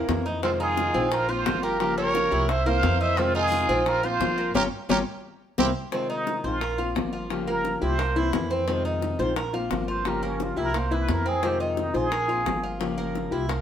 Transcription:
Already playing: cuban tres A#3
0.08 upright bass F2, nylon-string guitar E3 A#3 C4 E4, high bongo, low bongo
0.26 cuban tres D#4, high bongo
0.42 nylon-string guitar C3 D#3 G#3 C4 F4, cuban tres C4, trumpet C4, muted trumpet F4, high bongo
0.60 cuban tres D#4, trumpet F4, muted trumpet G#4, high bongo
0.77 high bongo
0.94 upright bass A#1, nylon-string guitar D#3 G#3 C4 F4, cuban tres C4, high bongo
1.11 trumpet F4, muted trumpet A#4, muted nylon-string guitar stroke, high bongo
1.28 nylon-string guitar A#3 C4 F4, cuban tres F4, trumpet F4, muted trumpet C5, high bongo
1.45 upright bass G1, nylon-string guitar F3 A#3 C4 F4, high bongo, low bongo
1.63 cuban tres A#3, trumpet G4, muted trumpet A#4
1.80 nylon-string guitar C#3 F3 A#3 F4 G4, trumpet G4, muted trumpet A#4, high bongo
1.97 cuban tres C#4, trumpet A#4, muted trumpet C#5, high bongo
2.15 cuban tres A#3, high bongo
2.31 upright bass C2, nylon-string guitar F3 A#3 F4 G4, cuban tres E4
2.48 trumpet C5, muted trumpet E5, muted nylon-string guitar stroke, high bongo
2.65 nylon-string guitar E3 A#3 C4 E4, cuban tres A#3, trumpet C5, muted trumpet F5, high bongo
2.83 upright bass F2, nylon-string guitar E3 A#3 C4 E4, high bongo, low bongo
3.00 cuban tres D#4, trumpet C5, muted trumpet E5, high bongo
3.17 nylon-string guitar C3 D#3 G#3 C4 F4, cuban tres C4, trumpet C4, muted trumpet F4, high bongo
3.35 cuban tres D#4, trumpet F4, muted trumpet G#4, high bongo
3.52 high bongo
3.69 upright bass A#1, nylon-string guitar D#3 G#3 C4 F4, cuban tres C4, high bongo
3.86 trumpet F4, muted trumpet A#4, muted nylon-string guitar stroke, high bongo
4.03 nylon-string guitar A#3 C4 F4, trumpet F4, cuban tres F4, muted trumpet C5, high bongo
4.20 upright bass G1, nylon-string guitar F3 A#3 C4 F4, high bongo, low bongo
4.38 cuban tres A#3
4.54 upright bass G1, nylon-string guitar G3 A#3 C#4, cuban tres C#4 F4 G4, trumpet G4, muted trumpet A#4, low bongo
4.89 upright bass G1, nylon-string guitar G3 A#3 C#4, cuban tres C#4 F4 G4, trumpet G4, muted trumpet A#4, low bongo
5.58 upright bass C2, nylon-string guitar G3 A#3 C4, cuban tres A#3 C4 E4, trumpet G4, muted trumpet C5, low bongo
5.92 nylon-string guitar C3 D#3 G#3 C4 F4, cuban tres C4, high bongo
6.10 cuban tres D#4, muted trumpet D#4, high bongo
6.27 high bongo
6.44 upright bass A#1, nylon-string guitar D#3 G#3 C4 F4, muted trumpet F4, cuban tres C5, high bongo
6.61 cuban tres A#4, muted nylon-string guitar stroke, high bongo
6.78 nylon-string guitar A#3 C4 F4, cuban tres F4, high bongo
6.95 upright bass G1, nylon-string guitar F3 A#3 C4 F4, high bongo, low bongo
7.13 cuban tres F4
7.30 nylon-string guitar C#3 F3 A#3 F4 G4, high bongo
7.48 cuban tres A#3, muted trumpet A#4, high bongo
7.65 high bongo
7.81 upright bass C2, nylon-string guitar F3 A#3 F4 G4, cuban tres E4, muted trumpet C5
7.99 cuban tres A#3, muted nylon-string guitar stroke, high bongo
8.16 nylon-string guitar E3 A#3 C4 E4, cuban tres E4, high bongo
8.33 upright bass F2, nylon-string guitar E3 A#3 C4 E4, high bongo, low bongo
8.50 cuban tres C4, high bongo
8.67 nylon-string guitar C3 D#3 G#3 C4 F4, cuban tres C4, high bongo
8.85 cuban tres D#4, high bongo
9.02 high bongo
9.19 upright bass A#1, nylon-string guitar D#3 G#3 C4 F4, cuban tres C5, high bongo
9.36 cuban tres A#4, muted nylon-string guitar stroke, high bongo
9.53 nylon-string guitar A#3 C4 F4, cuban tres F4, high bongo
9.70 upright bass G1, nylon-string guitar F3 A#3 C4 F4, high bongo, low bongo
9.88 cuban tres F4, muted trumpet C5
10.04 nylon-string guitar C#3 F3 A#3 F4 G4, muted trumpet A#4, high bongo
10.23 cuban tres A#3, muted trumpet C#4, high bongo
10.40 muted trumpet F4, high bongo
10.56 upright bass C2, nylon-string guitar F3 A#3 F4 G4, cuban tres E4, muted trumpet A#4
10.73 cuban tres A#3, muted nylon-string guitar stroke, high bongo
10.78 muted trumpet C5
10.91 nylon-string guitar E3 A#3 C4 E4, cuban tres E4, muted trumpet B4, high bongo
11.08 upright bass F2, nylon-string guitar E3 A#3 C4 E4, high bongo, low bongo
11.13 muted trumpet A#4
11.26 cuban tres C4, muted trumpet G#4, high bongo
11.42 nylon-string guitar C3 D#3 G#3 C4 F4, cuban tres C4, muted trumpet G4, high bongo
11.60 muted trumpet C4, cuban tres D#4, high bongo
11.77 muted trumpet D#4, high bongo
11.94 upright bass A#1, nylon-string guitar D#3 G#3 C4 F4, muted trumpet G#4, cuban tres C5, high bongo
12.11 cuban tres A#4, muted nylon-string guitar stroke, high bongo
12.28 nylon-string guitar A#3 C4 F4, cuban tres F4, high bongo
12.45 upright bass G1, nylon-string guitar F3 A#3 C4 F4, high bongo, low bongo
12.63 cuban tres F4
12.79 nylon-string guitar C#3 F3 A#3 F4 G4, high bongo
12.98 cuban tres A#3, high bongo
13.15 high bongo
13.31 upright bass C2, nylon-string guitar F3 A#3 F4 G4, cuban tres E4
13.49 cuban tres A#3, muted nylon-string guitar stroke, high bongo

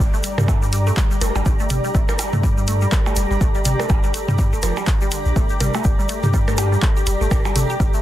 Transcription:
Already playing: ambient pad G4 D5 A#5, downlifter
0.00 shaker
0.14 synth pluck A3, shaker
0.24 synth pluck G3, closed hi-hat, shaker
0.38 sub bass G2, synth pluck G3, mid tom, percussion blips, shaker
0.48 synth pluck A3, kick, percussion blips, shaker
0.62 synth pluck G3, shaker
0.73 synth pluck G3, closed hi-hat, shaker
0.87 synth pluck A3, shaker
0.97 synth pluck G3, kick, clap, shaker
1.11 synth pluck G3, shaker
1.21 sub bass F1, synth pluck A3, closed hi-hat, percussion blips, shaker
1.35 sub bass G1, synth pluck G3, percussion blips, shaker
1.46 synth pluck G3, kick, shaker
1.59 synth pluck A3, shaker
1.70 sub bass G1, synth pluck G3, closed hi-hat, mid tom, shaker
1.84 synth pluck G3, shaker
1.95 sub bass G1, synth pluck A3, kick, shaker
2.09 synth pluck G3, percussion blips, shaker
2.19 synth pluck G3, closed hi-hat, percussion blips, shaker
2.33 sub bass G2, synth pluck A3, mid tom, shaker
2.43 synth pluck G3, kick, shaker
2.58 synth pluck G3, shaker
2.68 synth pluck A3, closed hi-hat, shaker
2.81 synth pluck G3, shaker
2.92 synth pluck G3, kick, clap, percussion blips, shaker
3.06 synth pluck A3, percussion blips, shaker
3.16 sub bass F1, synth pluck G3, closed hi-hat, shaker
3.31 sub bass G1, synth pluck G3, shaker
3.41 synth pluck A3, kick, shaker
3.55 synth pluck G3, shaker
3.65 sub bass G1, synth pluck G3, closed hi-hat, mid tom, shaker
3.80 synth pluck A3, percussion blips, shaker
3.89 sub bass G1, synth pluck G3, kick, percussion blips, shaker
4.04 synth pluck G3, shaker
4.14 synth pluck A3, closed hi-hat, shaker
4.28 sub bass G2, synth pluck G3, mid tom, shaker
4.38 synth pluck G3, kick, shaker
4.53 sub bass G1, synth pluck A3, shaker
4.63 sub bass F1, synth pluck F3, closed hi-hat, percussion blips, shaker
4.77 synth pluck G3, percussion blips, shaker
4.87 kick, clap, shaker
5.01 synth pluck G3, shaker
5.12 synth pluck D3, closed hi-hat, shaker
5.26 sub bass A#1, shaker
5.36 synth pluck A3, kick, shaker
5.49 synth pluck G4, shaker
5.60 sub bass G1, synth pluck G3, closed hi-hat, mid tom, percussion blips, shaker
5.74 synth pluck A3, percussion blips, shaker
5.84 sub bass G1, synth pluck G4, kick, shaker
5.99 synth pluck G3, shaker
6.09 synth pluck A3, closed hi-hat, shaker
6.23 sub bass G2, synth pluck G4, mid tom, shaker
6.34 synth pluck G3, kick, shaker
6.48 synth pluck A3, percussion blips, shaker
6.57 synth pluck G4, closed hi-hat, percussion blips, shaker
6.72 synth pluck G3, shaker
6.82 synth pluck A3, kick, clap, shaker
6.96 synth pluck G4, shaker
7.07 sub bass F1, synth pluck G3, closed hi-hat, shaker
7.21 sub bass G1, synth pluck A3, shaker
7.31 synth pluck G4, kick, percussion blips, shaker
7.45 synth pluck G3, percussion blips, shaker
7.56 sub bass G1, synth pluck A3, closed hi-hat, mid tom, shaker
7.70 synth pluck G4, shaker
7.80 sub bass G1, synth pluck G3, kick, shaker
7.94 synth pluck A3, shaker

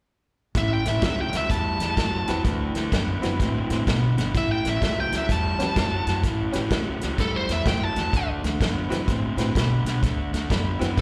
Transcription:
0.55 upright bass A1, overdriven electric guitar A2 E3, lead electric guitar E5, kick, snare, closed hi-hat
0.73 lead electric guitar G5
0.85 upright bass A1, overdriven electric guitar A2 E3, lead electric guitar E5, snare, closed hi-hat
1.02 upright bass C#2, overdriven electric guitar A2 F#3, lead electric guitar E5, kick, snare, closed hi-hat
1.21 lead electric guitar G5
1.32 upright bass C#2, overdriven electric guitar A2 F#3, snare, closed hi-hat
1.37 lead electric guitar E5
1.50 upright bass E2, overdriven electric guitar A2 G3, lead electric guitar A5, kick, snare, closed hi-hat
1.80 upright bass E2, overdriven electric guitar A2 G3, snare, closed hi-hat
1.97 upright bass F#2, overdriven electric guitar A2 F#3, kick, snare, closed hi-hat
2.27 upright bass E2, overdriven electric guitar A2 F#3, honky-tonk piano C4 E4 F#4 B4, snare, closed hi-hat
2.45 upright bass D2, overdriven electric guitar D3 A3, kick, snare, closed hi-hat
2.75 upright bass D2, overdriven electric guitar D3 A3, snare, closed hi-hat
2.92 upright bass F#2, overdriven electric guitar D3 B3, kick, snare, closed hi-hat
3.21 upright bass F#2, overdriven electric guitar D3 B3, honky-tonk piano C4 E4 F#4 B4, snare, closed hi-hat
3.40 upright bass A2, overdriven electric guitar D3 C4, kick, snare, closed hi-hat
3.70 upright bass A2, overdriven electric guitar D3 C4, snare, closed hi-hat
3.87 upright bass B2, overdriven electric guitar D3 B3, kick, snare, closed hi-hat
4.17 upright bass G1, overdriven electric guitar D3 B3, snare, closed hi-hat
4.35 upright bass A1, overdriven electric guitar A2 E3, lead electric guitar E5, kick, snare, closed hi-hat
4.52 lead electric guitar G5
4.65 upright bass A1, overdriven electric guitar A2 E3, snare, closed hi-hat
4.69 lead electric guitar E5
4.81 upright bass C#2, overdriven electric guitar A2 F#3, kick, snare, closed hi-hat
4.85 lead electric guitar E5
5.00 lead electric guitar G5
5.12 upright bass C#2, overdriven electric guitar A2 F#3, snare, closed hi-hat
5.18 lead electric guitar E5
5.29 upright bass E2, overdriven electric guitar A2 G3, lead electric guitar A5, kick, snare, closed hi-hat
5.59 upright bass E2, overdriven electric guitar A2 G3, honky-tonk piano C#4 F#4 G4 B4, snare, closed hi-hat
5.76 upright bass F#2, overdriven electric guitar A2 F#3, kick, snare, closed hi-hat
6.07 upright bass F#2, overdriven electric guitar A2 F#3, snare, closed hi-hat
6.23 upright bass A1, overdriven electric guitar A2 E3, kick, snare, closed hi-hat
6.52 upright bass A1, overdriven electric guitar A2 E3, honky-tonk piano C#4 F#4 G4 B4, snare, closed hi-hat
6.70 upright bass C#2, overdriven electric guitar A2 F#3, kick, snare, closed hi-hat
7.01 upright bass C#2, overdriven electric guitar A2 F#3, snare, closed hi-hat
7.18 upright bass E2, overdriven electric guitar A2 G3, lead electric guitar A4, kick, snare, closed hi-hat
7.36 lead electric guitar C5
7.49 upright bass E2, overdriven electric guitar A2 G3, lead electric guitar E5, snare, closed hi-hat
7.66 upright bass F#2, overdriven electric guitar A2 F#3, lead electric guitar G5, kick, snare, closed hi-hat
7.84 lead electric guitar A5
7.96 upright bass E2, overdriven electric guitar A2 F#3, snare, closed hi-hat
8.13 upright bass D2, overdriven electric guitar D3 A3, kick, snare, closed hi-hat
8.43 upright bass D2, overdriven electric guitar D3 A3, snare, closed hi-hat
8.61 upright bass F#2, overdriven electric guitar D3 B3, kick, snare, closed hi-hat
8.89 upright bass F#2, overdriven electric guitar D3 B3, honky-tonk piano C4 E4 F#4 B4, snare, closed hi-hat
9.08 upright bass A2, overdriven electric guitar D3 C4, kick, snare, closed hi-hat
9.36 upright bass A2, overdriven electric guitar D3 C4, honky-tonk piano C4 E4 F#4 B4, snare, closed hi-hat
9.55 upright bass B2, overdriven electric guitar D3 B3, kick, snare, closed hi-hat
9.85 upright bass B2, overdriven electric guitar D3 B3, snare, closed hi-hat
10.03 upright bass D2, overdriven electric guitar D3 A3, kick, snare, closed hi-hat
10.33 upright bass D2, overdriven electric guitar D3 A3, snare, closed hi-hat
10.50 upright bass F#2, overdriven electric guitar D3 B3, kick, snare, closed hi-hat
10.79 upright bass F#2, overdriven electric guitar D3 B3, honky-tonk piano C4 E4 F#4 B4, snare, closed hi-hat
10.97 upright bass A2, overdriven electric guitar D3 C4, kick, closed hi-hat

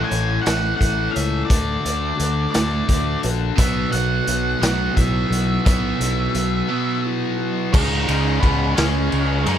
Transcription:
Already playing: overdriven electric guitar A2 E3 A3, clean electric guitar A3
0.04 lead electric guitar G#5
0.10 fingered electric bass A1, clean electric guitar C#5, closed hi-hat
0.41 overdriven electric guitar A3, lead electric guitar F#5
0.46 fingered electric bass A1, overdriven electric guitar A2 E3, clean electric guitar E4, snare, closed hi-hat
0.76 clean electric guitar A4, lead electric guitar F#5
0.81 fingered electric bass A1, kick, closed hi-hat
1.11 clean electric guitar C#5, lead electric guitar E5
1.16 fingered electric bass C#2, closed hi-hat
1.45 lead electric guitar D5
1.49 fingered electric bass D2, clean electric guitar D3, overdriven electric guitar D3 A3 D4, kick, closed hi-hat
1.85 fingered electric bass D2, closed hi-hat
2.17 fingered electric bass D2, clean electric guitar F#4, closed hi-hat
2.51 clean electric guitar A3, overdriven electric guitar D4, lead electric guitar D5, closed hi-hat
2.55 fingered electric bass D2, overdriven electric guitar D3 A3, snare
2.88 fingered electric bass D2, clean electric guitar D4, kick, closed hi-hat
3.23 fingered electric bass A#1, clean electric guitar F#4, closed hi-hat
3.57 fingered electric bass B1, clean electric guitar B2, overdriven electric guitar B2 F#3 B3, lead electric guitar E5, kick, closed hi-hat
3.92 fingered electric bass B1, lead electric guitar F#5, closed hi-hat
4.27 fingered electric bass B1, clean electric guitar F#4, closed hi-hat
4.62 fingered electric bass B1, overdriven electric guitar B2 F#3 B3, clean electric guitar B3, lead electric guitar F#5, snare, closed hi-hat
4.96 fingered electric bass B1, clean electric guitar E4, lead electric guitar E5, kick, closed hi-hat
5.31 fingered electric bass B1, clean electric guitar F#4, closed hi-hat
5.65 fingered electric bass B1, overdriven electric guitar B2 F#3 B3, clean electric guitar B2, lead electric guitar E5, kick, closed hi-hat
6.00 fingered electric bass B1, closed hi-hat
6.35 fingered electric bass B1, clean electric guitar F#4, closed hi-hat
6.69 overdriven electric guitar B2 F#3 B3, clean electric guitar B3
7.06 clean electric guitar E4
7.38 clean electric guitar F#4
7.73 fingered electric bass C#2, overdriven electric guitar C#3 G#3 C#4, lead electric guitar D#4 D#5, kick, crash
8.08 fingered electric bass C#2, overdriven electric guitar C#3 G#3 C#4, ride
8.39 fingered electric bass C#2, overdriven electric guitar C#3 G#3 C#4, lead electric guitar B3 B4, kick, ride
8.74 fingered electric bass C#2, overdriven electric guitar C#3 G#3 C#4, lead electric guitar C#4 C#5, ride
8.78 snare
9.12 fingered electric bass C#2, ride
9.45 fingered electric bass F#2, overdriven electric guitar C#3 G#3 C#4, lead electric guitar D#4 D#5, ride

